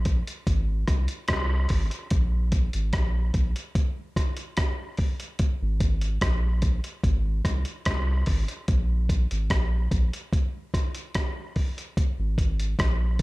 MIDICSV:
0, 0, Header, 1, 3, 480
1, 0, Start_track
1, 0, Tempo, 820793
1, 1235, Time_signature, 4, 2, 24, 8
1, 7732, End_track
2, 0, Start_track
2, 0, Title_t, "Sub bass"
2, 0, Program_c, 0, 38
2, 0, Note_on_c, 0, 34, 104
2, 134, Note_off_c, 0, 34, 0
2, 276, Note_on_c, 0, 32, 105
2, 495, Note_off_c, 0, 32, 0
2, 515, Note_on_c, 0, 36, 84
2, 627, Note_off_c, 0, 36, 0
2, 759, Note_on_c, 0, 36, 105
2, 976, Note_off_c, 0, 36, 0
2, 999, Note_on_c, 0, 32, 92
2, 1110, Note_off_c, 0, 32, 0
2, 1237, Note_on_c, 0, 34, 107
2, 1576, Note_off_c, 0, 34, 0
2, 1604, Note_on_c, 0, 32, 86
2, 1708, Note_off_c, 0, 32, 0
2, 1717, Note_on_c, 0, 34, 101
2, 1935, Note_off_c, 0, 34, 0
2, 1957, Note_on_c, 0, 34, 93
2, 2069, Note_off_c, 0, 34, 0
2, 3285, Note_on_c, 0, 32, 103
2, 3389, Note_off_c, 0, 32, 0
2, 3398, Note_on_c, 0, 32, 90
2, 3616, Note_off_c, 0, 32, 0
2, 3637, Note_on_c, 0, 34, 111
2, 3976, Note_off_c, 0, 34, 0
2, 4119, Note_on_c, 0, 32, 107
2, 4336, Note_off_c, 0, 32, 0
2, 4359, Note_on_c, 0, 36, 93
2, 4470, Note_off_c, 0, 36, 0
2, 4601, Note_on_c, 0, 36, 107
2, 4817, Note_off_c, 0, 36, 0
2, 4840, Note_on_c, 0, 32, 96
2, 4950, Note_off_c, 0, 32, 0
2, 5081, Note_on_c, 0, 34, 112
2, 5418, Note_off_c, 0, 34, 0
2, 5447, Note_on_c, 0, 32, 83
2, 5550, Note_off_c, 0, 32, 0
2, 5560, Note_on_c, 0, 34, 96
2, 5777, Note_off_c, 0, 34, 0
2, 5798, Note_on_c, 0, 34, 96
2, 5909, Note_off_c, 0, 34, 0
2, 7127, Note_on_c, 0, 32, 94
2, 7229, Note_off_c, 0, 32, 0
2, 7238, Note_on_c, 0, 32, 85
2, 7455, Note_off_c, 0, 32, 0
2, 7479, Note_on_c, 0, 34, 107
2, 7732, Note_off_c, 0, 34, 0
2, 7732, End_track
3, 0, Start_track
3, 0, Title_t, "Drums"
3, 30, Note_on_c, 9, 42, 66
3, 33, Note_on_c, 9, 36, 89
3, 89, Note_off_c, 9, 42, 0
3, 91, Note_off_c, 9, 36, 0
3, 160, Note_on_c, 9, 42, 57
3, 219, Note_off_c, 9, 42, 0
3, 273, Note_on_c, 9, 36, 120
3, 275, Note_on_c, 9, 42, 99
3, 332, Note_off_c, 9, 36, 0
3, 333, Note_off_c, 9, 42, 0
3, 512, Note_on_c, 9, 37, 65
3, 514, Note_on_c, 9, 36, 102
3, 514, Note_on_c, 9, 42, 79
3, 570, Note_off_c, 9, 37, 0
3, 572, Note_off_c, 9, 36, 0
3, 573, Note_off_c, 9, 42, 0
3, 632, Note_on_c, 9, 42, 58
3, 690, Note_off_c, 9, 42, 0
3, 747, Note_on_c, 9, 42, 76
3, 751, Note_on_c, 9, 37, 121
3, 756, Note_on_c, 9, 36, 122
3, 805, Note_off_c, 9, 42, 0
3, 810, Note_off_c, 9, 37, 0
3, 814, Note_off_c, 9, 36, 0
3, 987, Note_on_c, 9, 46, 71
3, 995, Note_on_c, 9, 36, 84
3, 1046, Note_off_c, 9, 46, 0
3, 1054, Note_off_c, 9, 36, 0
3, 1118, Note_on_c, 9, 42, 61
3, 1177, Note_off_c, 9, 42, 0
3, 1231, Note_on_c, 9, 42, 108
3, 1235, Note_on_c, 9, 36, 114
3, 1289, Note_off_c, 9, 42, 0
3, 1294, Note_off_c, 9, 36, 0
3, 1473, Note_on_c, 9, 42, 70
3, 1475, Note_on_c, 9, 36, 86
3, 1531, Note_off_c, 9, 42, 0
3, 1533, Note_off_c, 9, 36, 0
3, 1598, Note_on_c, 9, 42, 53
3, 1656, Note_off_c, 9, 42, 0
3, 1712, Note_on_c, 9, 42, 88
3, 1715, Note_on_c, 9, 36, 122
3, 1716, Note_on_c, 9, 37, 112
3, 1770, Note_off_c, 9, 42, 0
3, 1773, Note_off_c, 9, 36, 0
3, 1775, Note_off_c, 9, 37, 0
3, 1953, Note_on_c, 9, 42, 63
3, 1954, Note_on_c, 9, 36, 88
3, 2011, Note_off_c, 9, 42, 0
3, 2013, Note_off_c, 9, 36, 0
3, 2081, Note_on_c, 9, 42, 65
3, 2139, Note_off_c, 9, 42, 0
3, 2194, Note_on_c, 9, 36, 116
3, 2195, Note_on_c, 9, 42, 100
3, 2253, Note_off_c, 9, 36, 0
3, 2254, Note_off_c, 9, 42, 0
3, 2435, Note_on_c, 9, 36, 108
3, 2436, Note_on_c, 9, 37, 65
3, 2439, Note_on_c, 9, 42, 83
3, 2493, Note_off_c, 9, 36, 0
3, 2495, Note_off_c, 9, 37, 0
3, 2497, Note_off_c, 9, 42, 0
3, 2553, Note_on_c, 9, 42, 58
3, 2612, Note_off_c, 9, 42, 0
3, 2671, Note_on_c, 9, 42, 82
3, 2676, Note_on_c, 9, 37, 117
3, 2677, Note_on_c, 9, 36, 125
3, 2730, Note_off_c, 9, 42, 0
3, 2734, Note_off_c, 9, 37, 0
3, 2735, Note_off_c, 9, 36, 0
3, 2909, Note_on_c, 9, 46, 82
3, 2916, Note_on_c, 9, 36, 91
3, 2968, Note_off_c, 9, 46, 0
3, 2974, Note_off_c, 9, 36, 0
3, 3039, Note_on_c, 9, 42, 62
3, 3098, Note_off_c, 9, 42, 0
3, 3152, Note_on_c, 9, 42, 98
3, 3155, Note_on_c, 9, 36, 107
3, 3210, Note_off_c, 9, 42, 0
3, 3214, Note_off_c, 9, 36, 0
3, 3394, Note_on_c, 9, 42, 69
3, 3395, Note_on_c, 9, 36, 90
3, 3453, Note_off_c, 9, 36, 0
3, 3453, Note_off_c, 9, 42, 0
3, 3517, Note_on_c, 9, 42, 53
3, 3576, Note_off_c, 9, 42, 0
3, 3634, Note_on_c, 9, 42, 79
3, 3635, Note_on_c, 9, 36, 112
3, 3638, Note_on_c, 9, 37, 121
3, 3692, Note_off_c, 9, 42, 0
3, 3693, Note_off_c, 9, 36, 0
3, 3697, Note_off_c, 9, 37, 0
3, 3871, Note_on_c, 9, 42, 65
3, 3874, Note_on_c, 9, 36, 85
3, 3930, Note_off_c, 9, 42, 0
3, 3932, Note_off_c, 9, 36, 0
3, 4000, Note_on_c, 9, 42, 55
3, 4058, Note_off_c, 9, 42, 0
3, 4114, Note_on_c, 9, 36, 122
3, 4117, Note_on_c, 9, 42, 93
3, 4173, Note_off_c, 9, 36, 0
3, 4175, Note_off_c, 9, 42, 0
3, 4355, Note_on_c, 9, 36, 105
3, 4356, Note_on_c, 9, 37, 66
3, 4358, Note_on_c, 9, 42, 82
3, 4413, Note_off_c, 9, 36, 0
3, 4414, Note_off_c, 9, 37, 0
3, 4417, Note_off_c, 9, 42, 0
3, 4474, Note_on_c, 9, 42, 59
3, 4532, Note_off_c, 9, 42, 0
3, 4593, Note_on_c, 9, 42, 80
3, 4598, Note_on_c, 9, 36, 121
3, 4598, Note_on_c, 9, 37, 118
3, 4652, Note_off_c, 9, 42, 0
3, 4656, Note_off_c, 9, 36, 0
3, 4656, Note_off_c, 9, 37, 0
3, 4831, Note_on_c, 9, 46, 72
3, 4838, Note_on_c, 9, 36, 85
3, 4890, Note_off_c, 9, 46, 0
3, 4896, Note_off_c, 9, 36, 0
3, 4961, Note_on_c, 9, 42, 53
3, 5020, Note_off_c, 9, 42, 0
3, 5076, Note_on_c, 9, 42, 100
3, 5078, Note_on_c, 9, 36, 119
3, 5135, Note_off_c, 9, 42, 0
3, 5136, Note_off_c, 9, 36, 0
3, 5318, Note_on_c, 9, 36, 84
3, 5320, Note_on_c, 9, 42, 72
3, 5376, Note_off_c, 9, 36, 0
3, 5378, Note_off_c, 9, 42, 0
3, 5444, Note_on_c, 9, 42, 56
3, 5503, Note_off_c, 9, 42, 0
3, 5556, Note_on_c, 9, 42, 86
3, 5557, Note_on_c, 9, 36, 113
3, 5561, Note_on_c, 9, 37, 116
3, 5615, Note_off_c, 9, 42, 0
3, 5616, Note_off_c, 9, 36, 0
3, 5619, Note_off_c, 9, 37, 0
3, 5797, Note_on_c, 9, 36, 90
3, 5799, Note_on_c, 9, 42, 65
3, 5856, Note_off_c, 9, 36, 0
3, 5857, Note_off_c, 9, 42, 0
3, 5926, Note_on_c, 9, 42, 62
3, 5985, Note_off_c, 9, 42, 0
3, 6039, Note_on_c, 9, 36, 123
3, 6043, Note_on_c, 9, 42, 93
3, 6097, Note_off_c, 9, 36, 0
3, 6101, Note_off_c, 9, 42, 0
3, 6279, Note_on_c, 9, 36, 105
3, 6281, Note_on_c, 9, 37, 63
3, 6284, Note_on_c, 9, 42, 80
3, 6338, Note_off_c, 9, 36, 0
3, 6340, Note_off_c, 9, 37, 0
3, 6342, Note_off_c, 9, 42, 0
3, 6401, Note_on_c, 9, 42, 61
3, 6460, Note_off_c, 9, 42, 0
3, 6518, Note_on_c, 9, 42, 82
3, 6522, Note_on_c, 9, 36, 116
3, 6522, Note_on_c, 9, 37, 113
3, 6576, Note_off_c, 9, 42, 0
3, 6580, Note_off_c, 9, 36, 0
3, 6581, Note_off_c, 9, 37, 0
3, 6759, Note_on_c, 9, 46, 77
3, 6761, Note_on_c, 9, 36, 83
3, 6818, Note_off_c, 9, 46, 0
3, 6820, Note_off_c, 9, 36, 0
3, 6888, Note_on_c, 9, 42, 56
3, 6947, Note_off_c, 9, 42, 0
3, 7001, Note_on_c, 9, 36, 114
3, 7003, Note_on_c, 9, 42, 110
3, 7059, Note_off_c, 9, 36, 0
3, 7062, Note_off_c, 9, 42, 0
3, 7239, Note_on_c, 9, 36, 81
3, 7242, Note_on_c, 9, 42, 70
3, 7298, Note_off_c, 9, 36, 0
3, 7301, Note_off_c, 9, 42, 0
3, 7366, Note_on_c, 9, 42, 54
3, 7424, Note_off_c, 9, 42, 0
3, 7478, Note_on_c, 9, 36, 114
3, 7480, Note_on_c, 9, 42, 86
3, 7484, Note_on_c, 9, 37, 122
3, 7536, Note_off_c, 9, 36, 0
3, 7538, Note_off_c, 9, 42, 0
3, 7543, Note_off_c, 9, 37, 0
3, 7732, End_track
0, 0, End_of_file